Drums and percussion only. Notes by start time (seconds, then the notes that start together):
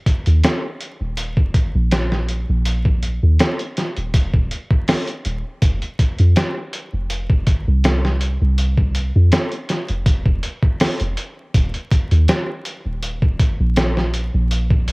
0.06 kick, closed hi-hat
0.26 closed hi-hat
0.43 snare, closed hi-hat
0.81 closed hi-hat
1.17 closed hi-hat
1.37 kick
1.54 kick, closed hi-hat
1.91 snare, closed hi-hat
2.12 snare
2.28 closed hi-hat
2.65 closed hi-hat
2.85 kick
3.03 closed hi-hat
3.39 snare, closed hi-hat
3.59 closed hi-hat
3.77 snare, closed hi-hat
3.96 closed hi-hat
4.14 kick, closed hi-hat
4.33 kick
4.51 closed hi-hat
4.70 kick
4.88 snare, open hi-hat
5.07 closed hi-hat
5.25 closed hi-hat
5.62 kick, closed hi-hat
5.82 closed hi-hat
5.99 kick, closed hi-hat
6.18 closed hi-hat
6.36 snare, closed hi-hat
6.73 closed hi-hat
7.10 closed hi-hat
7.30 kick
7.47 kick, closed hi-hat
7.84 snare, closed hi-hat
8.05 snare
8.21 closed hi-hat
8.58 closed hi-hat
8.78 kick
8.95 closed hi-hat
9.32 snare, closed hi-hat
9.52 closed hi-hat
9.69 snare, closed hi-hat
9.89 closed hi-hat
10.06 kick, closed hi-hat
10.26 kick
10.43 closed hi-hat
10.63 kick
10.80 snare, open hi-hat
11.00 closed hi-hat
11.17 closed hi-hat
11.54 kick, closed hi-hat
11.74 closed hi-hat
11.91 kick, closed hi-hat
12.11 closed hi-hat
12.28 snare, closed hi-hat
12.65 closed hi-hat
13.02 closed hi-hat
13.22 kick
13.39 kick, closed hi-hat
13.76 snare, closed hi-hat
13.97 snare
14.14 closed hi-hat
14.51 closed hi-hat
14.70 kick
14.88 closed hi-hat